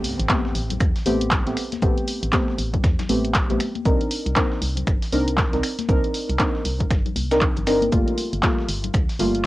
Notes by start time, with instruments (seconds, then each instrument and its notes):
Already playing: synth stab A3 B3 C4 G4, impact
0.04 open hi-hat, shaker
0.19 fm bass A1, closed hi-hat
0.29 synth stab A3 B3 C4 G4, kick, snare, clap, closed hi-hat, high conga, shaker
0.45 snare
0.55 fm bass A1, open hi-hat, shaker
0.70 closed hi-hat, low conga
0.80 fm bass E2, finger snap, kick, closed hi-hat, shaker
0.96 snare, open hi-hat
1.06 fm bass A1, synth stab A3 B3 C4 G4, open hi-hat, high conga, shaker
1.21 closed hi-hat
1.31 kick, snare, clap, closed hi-hat, low conga, shaker
1.47 fm bass A1, synth stab A3 B3 C4 G4, snare, closed hi-hat
1.57 finger snap, open hi-hat, shaker
1.72 snare, closed hi-hat, high conga
1.82 fm bass A1, synth stab A3 B3 C4 G4, kick, closed hi-hat, shaker
1.97 closed hi-hat
2.08 open hi-hat, shaker
2.23 fm bass A1, closed hi-hat
2.33 synth stab A3 B3 C4 G4, kick, snare, clap, closed hi-hat, high conga, shaker
2.48 snare
2.58 fm bass A1, open hi-hat, shaker
2.74 kick, closed hi-hat, low conga
2.84 fm bass E2, finger snap, kick, snare, closed hi-hat, shaker
2.99 snare, closed hi-hat, low conga, shaker
3.09 fm bass A1, synth stab A3 B3 C4 G4, open hi-hat, high conga, shaker
3.25 closed hi-hat
3.34 kick, snare, clap, closed hi-hat, shaker
3.50 fm bass A1, synth stab A3 B3 C4 G4, closed hi-hat, low conga
3.60 finger snap, open hi-hat, shaker
3.75 closed hi-hat, high conga
3.85 fm bass C2, synth stab C4 D4 D#4 A#4, kick, closed hi-hat, shaker
4.01 closed hi-hat
4.11 open hi-hat, shaker
4.26 fm bass C2, closed hi-hat
4.36 synth stab C4 D4 D#4 A#4, kick, snare, clap, closed hi-hat, high conga, shaker
4.52 snare
4.62 fm bass C2, open hi-hat, shaker
4.77 closed hi-hat, low conga
4.87 fm bass G1, finger snap, kick, closed hi-hat, shaker
5.02 snare, open hi-hat
5.13 fm bass C2, synth stab C4 D4 D#4 A#4, open hi-hat, high conga, shaker
5.28 closed hi-hat
5.37 kick, snare, clap, closed hi-hat, low conga, shaker
5.53 fm bass C2, synth stab C4 D4 D#4 A#4, snare, closed hi-hat
5.63 finger snap, open hi-hat, shaker
5.79 snare, closed hi-hat, high conga
5.89 fm bass C2, synth stab C4 D4 D#4 A#4, kick, closed hi-hat, shaker
6.04 closed hi-hat
6.14 open hi-hat, shaker
6.30 fm bass C2, closed hi-hat
6.39 synth stab C4 D4 D#4 A#4, kick, snare, clap, closed hi-hat, high conga, shaker
6.55 snare
6.65 fm bass C2, open hi-hat, shaker
6.80 kick, closed hi-hat, low conga
6.91 fm bass G1, finger snap, kick, snare, closed hi-hat, shaker
7.06 closed hi-hat, low conga
7.16 fm bass C2, open hi-hat, high conga, shaker
7.31 synth stab C4 D4 D#4 A#4, snare, closed hi-hat, shaker
7.41 kick, clap, closed hi-hat
7.56 fm bass G1, closed hi-hat, low conga, shaker
7.67 synth stab C4 D4 D#4 A#4, finger snap, snare, open hi-hat, shaker
7.82 closed hi-hat, high conga
7.92 fm bass G1, synth stab G3 A3 A#3 F4, kick, closed hi-hat, shaker
8.08 closed hi-hat
8.18 open hi-hat, shaker
8.33 fm bass G1, closed hi-hat
8.43 synth stab G3 A3 A#3 F4, kick, snare, clap, closed hi-hat, high conga, shaker
8.59 snare
8.69 fm bass G1, open hi-hat, shaker
8.84 closed hi-hat, low conga
8.94 fm bass D2, finger snap, kick, closed hi-hat, shaker
9.09 snare, open hi-hat
9.19 fm bass G1, synth stab G3 A3 A#3 F4, open hi-hat, high conga, shaker
9.35 closed hi-hat